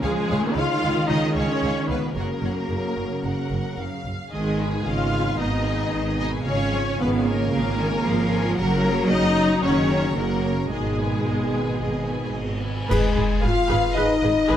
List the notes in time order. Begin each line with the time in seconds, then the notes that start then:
Already playing: C#3 C#4 F4
0.03 C#2 F3 G#3 G#4 C#5 F5
0.30 C#2 D#3 C#5 F5
0.56 C#2 F4 C#5 F5
0.83 C#2 C#5 F5
1.09 C#2 D#4 D#5 F5
1.13 C#5
1.35 C#2 C#4 C#5 F5
1.40 C#5
1.63 C#2 C#5 F5
1.89 C#2 B3 B4 C#5 F5
2.15 F#1 C#3 F#3 A#3 C#4 F#4 A#4 C#5 F#5
2.43 F#1 C#5 F#5
2.70 F#1 A#4
2.97 F#1
3.24 F#1 F#5
3.52 F#1
3.79 F#1 F5
4.06 F#1
4.32 G#1 D#3 G#3 B3 D#4 G#4 D#5
4.61 B4 G#5
4.86 G#1 C#3 F4 G#4 D#5 F5
5.14 B4 G#5
5.39 G#1 B2 D#4 G#4 D#5
5.65 B4 G#5
5.93 G#1 D#3 G#4 D#5
6.19 B2 D#4 B4 D#5 G#5
6.44 G#1 C#3 C#4 F4 G#4 C#5 F5
6.72 F3 C#5 G#5
6.99 G#1 D#3 B3 G#4 B4 F5
7.26 A#3 A#4 C#5 G#5
7.52 G#1 C#3 G#4 F5
7.77 D#3 C#5 G#5
8.04 G#1 F3 G#4 F5
8.31 C#5 G#5
8.56 F#1 F#3 A#3 C#4 F#4 A#4 F#5
8.61 C#3
8.85 C#5 A#5
9.10 F#1 D#4 A#4 D#5 F#5
9.38 C#5 A#5
9.62 F#1 C#3 D#3 F#3 C#4 F#4 A#4 C#5 F#5
9.91 C#5 A#5
10.16 F#1 C#3 F#3 A#3 C#4 F#4 A#4 F#5
10.46 C#5 A#5
10.71 G#1 B2 D#3 G#3 B3 D#4 G#4 D#5
11.00 B4 G#5
11.26 G#1 G#4 D#5
11.55 B4 G#5
11.81 G#1 G#4 D#5
12.07 B4 G#5
12.33 G#1 G#4 D#5
12.61 B4 G#5
12.88 G#1 G#2 G#3 G#4 B4, concert bass drum, crash
13.16 G#1 G#2 G#4 B4
13.42 G#1 G#2 F4 G#4 B4 F5
13.70 G#1 G#2 G#4 B4
13.96 G#1 G#2 G#3 D#4 G#4 B4 D#5
14.23 G#1 G#2 G#4 B4
14.49 G#1 G#2 G#4 B4